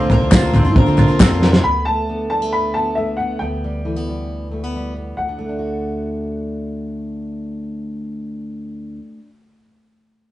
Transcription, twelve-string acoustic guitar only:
0, 0, Header, 1, 2, 480
1, 0, Start_track
1, 0, Tempo, 442804
1, 1779, Time_signature, 4, 2, 24, 8
1, 11183, End_track
2, 0, Start_track
2, 0, Title_t, "Twelve-string acoustic guitar"
2, 0, Program_c, 0, 25
2, 0, Note_on_c, 0, 65, 89
2, 106, Note_on_c, 0, 50, 61
2, 110, Note_on_c, 0, 58, 67
2, 111, Note_off_c, 0, 65, 0
2, 121, Note_on_c, 0, 60, 70
2, 128, Note_on_c, 0, 65, 66
2, 328, Note_off_c, 0, 50, 0
2, 334, Note_off_c, 0, 58, 0
2, 341, Note_on_c, 0, 50, 92
2, 343, Note_off_c, 0, 60, 0
2, 347, Note_on_c, 0, 58, 93
2, 348, Note_off_c, 0, 65, 0
2, 356, Note_on_c, 0, 60, 106
2, 361, Note_on_c, 0, 65, 109
2, 564, Note_off_c, 0, 50, 0
2, 575, Note_off_c, 0, 58, 0
2, 577, Note_on_c, 0, 50, 69
2, 584, Note_off_c, 0, 60, 0
2, 588, Note_on_c, 0, 58, 69
2, 592, Note_off_c, 0, 65, 0
2, 597, Note_on_c, 0, 60, 77
2, 603, Note_on_c, 0, 65, 75
2, 687, Note_off_c, 0, 65, 0
2, 698, Note_off_c, 0, 60, 0
2, 700, Note_off_c, 0, 50, 0
2, 700, Note_on_c, 0, 65, 64
2, 706, Note_off_c, 0, 58, 0
2, 711, Note_on_c, 0, 60, 61
2, 721, Note_on_c, 0, 58, 56
2, 921, Note_off_c, 0, 65, 0
2, 934, Note_on_c, 0, 65, 64
2, 938, Note_off_c, 0, 60, 0
2, 945, Note_off_c, 0, 58, 0
2, 951, Note_on_c, 0, 60, 54
2, 958, Note_on_c, 0, 58, 53
2, 1048, Note_off_c, 0, 58, 0
2, 1052, Note_on_c, 0, 50, 79
2, 1058, Note_off_c, 0, 60, 0
2, 1058, Note_off_c, 0, 65, 0
2, 1061, Note_on_c, 0, 58, 79
2, 1071, Note_on_c, 0, 60, 86
2, 1080, Note_on_c, 0, 65, 83
2, 1159, Note_off_c, 0, 65, 0
2, 1172, Note_on_c, 0, 65, 72
2, 1176, Note_off_c, 0, 50, 0
2, 1176, Note_off_c, 0, 60, 0
2, 1181, Note_off_c, 0, 58, 0
2, 1189, Note_on_c, 0, 60, 62
2, 1204, Note_on_c, 0, 58, 56
2, 1285, Note_off_c, 0, 58, 0
2, 1293, Note_on_c, 0, 50, 85
2, 1294, Note_off_c, 0, 60, 0
2, 1296, Note_off_c, 0, 65, 0
2, 1298, Note_on_c, 0, 58, 103
2, 1307, Note_on_c, 0, 60, 97
2, 1310, Note_on_c, 0, 65, 94
2, 1638, Note_off_c, 0, 65, 0
2, 1647, Note_off_c, 0, 60, 0
2, 1651, Note_on_c, 0, 65, 58
2, 1655, Note_off_c, 0, 50, 0
2, 1658, Note_off_c, 0, 58, 0
2, 1660, Note_on_c, 0, 60, 49
2, 1675, Note_on_c, 0, 58, 46
2, 1775, Note_off_c, 0, 65, 0
2, 1779, Note_off_c, 0, 60, 0
2, 1787, Note_off_c, 0, 58, 0
2, 11183, End_track
0, 0, End_of_file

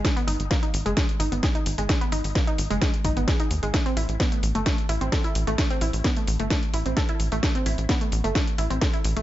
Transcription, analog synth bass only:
0, 0, Header, 1, 2, 480
1, 0, Start_track
1, 0, Tempo, 461538
1, 47, Time_signature, 4, 2, 24, 8
1, 9592, End_track
2, 0, Start_track
2, 0, Title_t, "Analog synth bass"
2, 0, Program_c, 0, 38
2, 288, Note_on_c, 0, 32, 92
2, 391, Note_off_c, 0, 32, 0
2, 414, Note_on_c, 0, 32, 81
2, 507, Note_off_c, 0, 32, 0
2, 768, Note_on_c, 0, 32, 99
2, 871, Note_off_c, 0, 32, 0
2, 893, Note_on_c, 0, 30, 82
2, 987, Note_off_c, 0, 30, 0
2, 1247, Note_on_c, 0, 32, 92
2, 1351, Note_off_c, 0, 32, 0
2, 1374, Note_on_c, 0, 32, 85
2, 1468, Note_off_c, 0, 32, 0
2, 1729, Note_on_c, 0, 32, 97
2, 1832, Note_off_c, 0, 32, 0
2, 1854, Note_on_c, 0, 32, 81
2, 1948, Note_off_c, 0, 32, 0
2, 2208, Note_on_c, 0, 32, 90
2, 2311, Note_off_c, 0, 32, 0
2, 2333, Note_on_c, 0, 32, 87
2, 2427, Note_off_c, 0, 32, 0
2, 2689, Note_on_c, 0, 32, 94
2, 2792, Note_off_c, 0, 32, 0
2, 2814, Note_on_c, 0, 30, 85
2, 2908, Note_off_c, 0, 30, 0
2, 3168, Note_on_c, 0, 32, 92
2, 3271, Note_off_c, 0, 32, 0
2, 3293, Note_on_c, 0, 32, 81
2, 3387, Note_off_c, 0, 32, 0
2, 3647, Note_on_c, 0, 39, 94
2, 3751, Note_off_c, 0, 39, 0
2, 3773, Note_on_c, 0, 32, 79
2, 3867, Note_off_c, 0, 32, 0
2, 4127, Note_on_c, 0, 33, 93
2, 4231, Note_off_c, 0, 33, 0
2, 4252, Note_on_c, 0, 33, 84
2, 4347, Note_off_c, 0, 33, 0
2, 4606, Note_on_c, 0, 33, 98
2, 4710, Note_off_c, 0, 33, 0
2, 4732, Note_on_c, 0, 31, 79
2, 4827, Note_off_c, 0, 31, 0
2, 5087, Note_on_c, 0, 33, 92
2, 5191, Note_off_c, 0, 33, 0
2, 5212, Note_on_c, 0, 33, 83
2, 5307, Note_off_c, 0, 33, 0
2, 5567, Note_on_c, 0, 33, 97
2, 5671, Note_off_c, 0, 33, 0
2, 5692, Note_on_c, 0, 33, 81
2, 5786, Note_off_c, 0, 33, 0
2, 6047, Note_on_c, 0, 33, 92
2, 6151, Note_off_c, 0, 33, 0
2, 6172, Note_on_c, 0, 33, 84
2, 6267, Note_off_c, 0, 33, 0
2, 6527, Note_on_c, 0, 33, 97
2, 6631, Note_off_c, 0, 33, 0
2, 6652, Note_on_c, 0, 31, 84
2, 6747, Note_off_c, 0, 31, 0
2, 7005, Note_on_c, 0, 33, 93
2, 7110, Note_off_c, 0, 33, 0
2, 7131, Note_on_c, 0, 33, 81
2, 7226, Note_off_c, 0, 33, 0
2, 7485, Note_on_c, 0, 33, 91
2, 7590, Note_off_c, 0, 33, 0
2, 7612, Note_on_c, 0, 33, 79
2, 7707, Note_off_c, 0, 33, 0
2, 7968, Note_on_c, 0, 33, 94
2, 8071, Note_off_c, 0, 33, 0
2, 8093, Note_on_c, 0, 33, 82
2, 8187, Note_off_c, 0, 33, 0
2, 8448, Note_on_c, 0, 33, 98
2, 8551, Note_off_c, 0, 33, 0
2, 8575, Note_on_c, 0, 31, 82
2, 8668, Note_off_c, 0, 31, 0
2, 8928, Note_on_c, 0, 33, 96
2, 9031, Note_off_c, 0, 33, 0
2, 9054, Note_on_c, 0, 33, 84
2, 9148, Note_off_c, 0, 33, 0
2, 9408, Note_on_c, 0, 33, 96
2, 9511, Note_off_c, 0, 33, 0
2, 9534, Note_on_c, 0, 33, 81
2, 9592, Note_off_c, 0, 33, 0
2, 9592, End_track
0, 0, End_of_file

